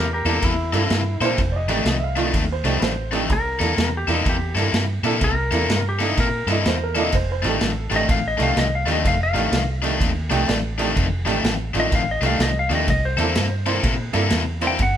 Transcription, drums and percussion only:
0.26 snare soft
0.26 ride medium
0.42 kick loud
0.42 snare soft
0.42 ride medium
0.73 snare soft
0.73 ride medium
0.90 snare loud
0.90 ride medium
1.21 snare soft
1.21 ride medium
1.38 kick loud
1.38 snare soft
1.38 ride medium
1.68 snare soft
1.68 ride medium
1.86 snare loud
1.86 ride medium
2.16 snare soft
2.16 ride medium
2.34 kick loud
2.34 snare soft
2.34 ride medium
2.65 snare soft
2.65 ride medium
2.82 snare loud
2.82 ride medium
3.13 snare soft
3.13 ride medium
3.30 kick loud
3.30 snare soft
3.30 ride medium
3.61 snare soft
3.61 ride medium
3.78 snare loud
3.78 ride medium
4.08 snare soft
4.08 ride medium
4.26 kick loud
4.26 snare soft
4.26 ride medium
4.57 snare soft
4.57 ride medium
4.74 snare loud
4.74 ride medium
5.04 snare soft
5.04 ride medium
5.21 kick loud
5.21 snare soft
5.21 ride medium
5.52 snare soft
5.52 ride medium
5.70 snare loud
5.70 ride medium
6.00 snare soft
6.00 ride medium
6.17 kick loud
6.17 snare soft
6.17 ride medium
6.48 snare soft
6.48 ride medium
6.65 snare loud
6.65 ride medium
6.95 snare soft
6.95 ride medium
7.12 kick medium
7.12 snare soft
7.12 ride medium
7.44 snare soft
7.44 ride medium
7.61 snare loud
7.61 ride medium
7.91 snare soft
7.91 ride medium
8.09 kick loud
8.09 snare soft
8.09 ride medium
8.40 snare soft
8.40 ride medium
8.57 snare medium
8.57 ride medium
8.88 snare soft
8.88 ride medium
9.05 kick loud
9.05 snare soft
9.05 ride medium
9.36 snare soft
9.36 ride medium
9.52 snare loud
9.52 ride medium
9.84 snare soft
9.84 ride medium
10.01 kick loud
10.01 snare soft
10.01 ride medium
10.31 snare soft
10.31 ride medium
10.49 snare loud
10.49 ride medium
10.79 snare soft
10.79 ride medium
10.96 kick loud
10.96 snare soft
10.96 ride medium
11.27 snare soft
11.27 ride medium
11.44 snare loud
11.44 ride medium
11.75 snare soft
11.75 ride medium
11.92 kick loud
11.92 snare soft
11.92 ride medium
12.23 snare soft
12.23 ride medium
12.40 snare loud
12.40 ride medium
12.71 snare soft
12.71 ride medium
12.88 kick loud
12.88 snare soft
12.88 ride medium
13.18 snare soft
13.18 ride medium
13.35 snare loud
13.35 ride medium
13.66 snare soft
13.66 ride medium
13.83 kick loud
13.83 snare soft
13.83 ride medium
14.13 snare soft
14.13 ride medium
14.30 snare loud
14.30 ride medium
14.61 snare soft
14.61 ride medium
14.79 kick loud
14.79 snare soft
14.79 ride medium

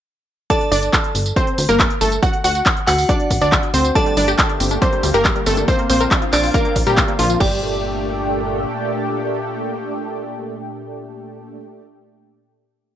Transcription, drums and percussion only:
0.50 kick loud
0.50 closed hi-hat loud
0.50 tambourine soft
0.61 closed hi-hat medium
0.72 open hi-hat loud
0.72 tambourine medium
0.83 closed hi-hat medium
0.83 tambourine soft
0.93 kick loud
0.93 clap loud
0.93 closed hi-hat loud
0.93 tambourine soft
1.04 closed hi-hat medium
1.15 open hi-hat loud
1.15 tambourine medium
1.26 closed hi-hat medium
1.26 tambourine soft
1.36 kick loud
1.36 closed hi-hat loud
1.36 tambourine soft
1.47 closed hi-hat medium
1.58 open hi-hat loud
1.58 tambourine medium
1.69 tambourine soft
1.80 kick loud
1.80 clap loud
1.80 closed hi-hat loud
1.80 tambourine soft
1.90 closed hi-hat medium
2.01 open hi-hat loud
2.01 tambourine medium
2.12 closed hi-hat medium
2.12 tambourine soft
2.23 kick loud
2.23 closed hi-hat medium
2.23 tambourine soft
2.33 closed hi-hat medium
2.44 open hi-hat loud
2.44 tambourine medium
2.55 closed hi-hat medium
2.55 tambourine soft
2.66 kick loud
2.66 clap loud
2.66 closed hi-hat loud
2.66 tambourine soft
2.77 closed hi-hat medium
2.87 clap medium
2.87 open hi-hat loud
2.87 tambourine medium
2.98 open hi-hat medium
2.98 tambourine soft
3.09 kick loud
3.09 closed hi-hat medium
3.09 tambourine soft
3.20 closed hi-hat medium
3.30 kick medium
3.30 open hi-hat loud
3.30 tambourine medium
3.41 tambourine soft
3.52 kick loud
3.52 clap loud
3.52 closed hi-hat medium
3.52 tambourine soft
3.63 closed hi-hat medium
3.74 open hi-hat loud
3.74 tambourine medium
3.85 closed hi-hat medium
3.85 tambourine soft
3.95 kick loud
3.95 closed hi-hat medium
3.95 tambourine soft
4.06 closed hi-hat medium
4.17 open hi-hat loud
4.17 tambourine medium
4.28 closed hi-hat medium
4.28 tambourine soft
4.39 kick loud
4.39 clap loud
4.39 closed hi-hat medium
4.39 tambourine soft
4.49 closed hi-hat medium
4.60 open hi-hat loud
4.60 tambourine medium
4.71 closed hi-hat soft
4.71 tambourine soft
4.82 kick loud
4.82 closed hi-hat medium
4.82 tambourine soft
4.93 closed hi-hat medium
5.03 open hi-hat loud
5.03 tambourine medium
5.14 closed hi-hat medium
5.14 tambourine soft
5.25 kick loud
5.25 clap loud
5.25 closed hi-hat medium
5.25 tambourine soft
5.36 closed hi-hat medium
5.46 open hi-hat loud
5.46 tambourine medium
5.57 closed hi-hat medium
5.57 tambourine soft
5.68 kick loud
5.68 closed hi-hat medium
5.68 tambourine soft
5.79 closed hi-hat medium
5.90 open hi-hat loud
5.90 tambourine medium
6.00 tambourine soft
6.11 kick loud
6.11 clap loud
6.11 closed hi-hat medium
6.11 tambourine soft
6.22 closed hi-hat medium
6.33 clap medium
6.33 open hi-hat loud
6.33 tambourine medium
6.43 open hi-hat medium
6.43 tambourine soft
6.54 kick loud
6.54 closed hi-hat medium
6.54 tambourine soft
6.65 closed hi-hat soft
6.76 kick medium
6.76 open hi-hat loud
6.76 tambourine medium
6.87 closed hi-hat medium
6.87 tambourine soft
6.97 kick loud
6.97 clap loud
6.97 closed hi-hat medium
6.97 tambourine soft
7.08 closed hi-hat soft
7.19 open hi-hat loud
7.19 tambourine medium
7.30 closed hi-hat medium
7.30 tambourine soft
7.41 kick loud
7.41 crash medium

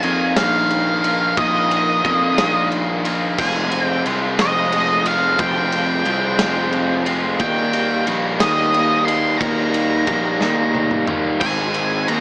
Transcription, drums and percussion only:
0.03 ride medium
0.36 snare loud
0.36 ride loud
0.70 ride medium
1.04 ride medium
1.37 kick loud
1.37 ride loud
1.71 ride medium
2.05 kick medium
2.05 ride medium
2.38 snare loud
2.38 ride loud
2.72 ride medium
3.05 ride medium
3.38 kick loud
3.38 crash loud
3.72 ride medium
4.06 ride medium
4.39 snare loud
4.39 ride loud
4.72 ride loud
5.06 ride medium
5.39 kick loud
5.39 ride loud
5.72 ride medium
6.05 ride medium
6.39 snare loud
6.39 ride loud
6.73 ride medium
7.06 ride medium
7.39 kick loud
7.39 ride loud
7.73 ride medium
8.07 ride medium
8.40 snare loud
8.40 ride loud
8.74 ride medium
9.08 ride medium
9.41 kick loud
9.41 ride loud
9.74 ride medium
10.07 kick medium
10.07 ride medium
10.41 snare medium
10.75 high tom medium
10.91 mid tom medium
11.07 mid tom loud
11.41 kick loud
11.41 splash medium
11.41 crash loud
11.74 ride medium
12.08 ride loud

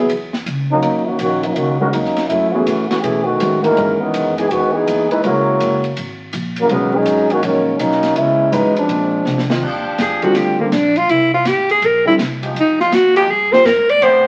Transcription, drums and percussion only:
0.10 ride medium
0.33 snare soft
0.46 hi-hat pedal medium
0.46 ride medium
0.82 ride medium
1.19 hi-hat pedal medium
1.19 ride medium
1.43 ride soft
1.56 ride medium
1.93 hi-hat pedal medium
1.93 ride medium
2.05 snare soft
2.16 snare soft
2.16 ride soft
2.30 ride medium
2.67 hi-hat pedal medium
2.67 ride medium
2.91 snare medium
2.91 ride soft
3.04 ride medium
3.40 hi-hat pedal soft
3.40 ride medium
3.64 ride medium
3.77 ride medium
4.14 hi-hat pedal medium
4.14 ride medium
4.38 ride soft
4.51 ride medium
4.87 hi-hat pedal soft
4.87 ride medium
5.11 kick medium
5.11 ride medium
5.24 ride medium
5.60 hi-hat pedal medium
5.60 ride medium
5.84 ride soft
5.97 ride medium
6.33 hi-hat pedal medium
6.33 ride medium
6.56 ride medium
6.69 ride medium
7.06 hi-hat pedal medium
7.06 ride medium
7.30 ride soft
7.43 ride medium
7.79 hi-hat pedal medium
7.79 ride medium
7.91 snare soft
8.03 snare soft
8.03 ride medium
8.16 ride medium
8.52 hi-hat pedal medium
8.52 ride medium
8.76 ride medium
8.89 ride medium
9.26 snare soft
9.26 hi-hat pedal medium
9.38 snare medium
9.50 snare medium
9.62 kick medium
9.62 crash medium
9.98 snare medium
9.98 hi-hat pedal soft
9.98 ride medium
10.22 ride soft
10.35 snare soft
10.35 ride medium
10.59 kick medium
10.72 snare medium
10.72 hi-hat pedal soft
10.72 ride medium
10.96 ride soft
11.09 ride medium
11.45 snare medium
11.45 hi-hat pedal medium
11.45 ride medium
11.69 ride soft
11.82 ride medium
12.19 snare medium
12.19 hi-hat pedal medium
12.19 ride medium
12.43 ride soft
12.56 ride medium
12.80 snare soft
12.92 snare medium
12.92 hi-hat pedal medium
12.92 ride medium
13.16 ride medium
13.53 snare soft
13.66 snare medium
13.66 hi-hat pedal medium
13.66 ride medium
13.89 ride soft
14.02 ride medium

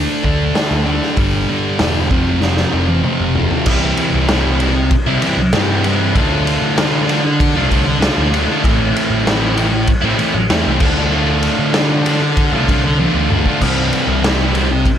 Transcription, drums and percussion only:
0.24 kick medium
0.55 snare loud
0.55 open hi-hat medium
1.02 snare soft
1.17 kick loud
1.17 open hi-hat medium
1.79 snare loud
1.79 open hi-hat medium
2.11 kick loud
2.42 snare medium
2.57 snare medium
2.89 high tom medium
3.04 mid tom medium
3.35 floor tom medium
3.51 floor tom medium
3.66 kick loud
3.66 crash loud
3.97 ride medium
4.28 snare loud
4.28 ride loud
4.60 ride medium
4.91 kick loud
4.91 ride medium
5.22 ride medium
5.53 snare loud
5.53 ride loud
5.84 ride medium
6.15 kick loud
6.15 ride loud
6.47 ride medium
6.78 snare loud
6.78 ride loud
7.09 ride medium
7.40 kick loud
7.40 ride loud
7.71 kick medium
7.71 ride medium
8.02 snare loud
8.02 ride loud
8.34 ride medium
8.64 kick loud
8.64 ride loud
8.96 ride medium
9.27 snare loud
9.27 ride loud
9.57 ride medium
9.87 kick loud
9.87 ride loud
10.19 ride medium
10.50 snare loud
10.50 ride loud
10.80 kick loud
10.80 crash medium
11.43 ride medium
11.74 snare loud
11.74 ride loud
12.06 ride medium
12.37 kick loud
12.37 ride loud
12.68 kick medium
12.68 ride medium
13.00 high tom medium
13.30 mid tom medium
13.46 kick medium
13.61 kick loud
13.61 crash medium
13.93 ride medium
14.24 snare loud
14.24 ride loud
14.55 ride medium
14.86 kick loud
14.86 ride loud

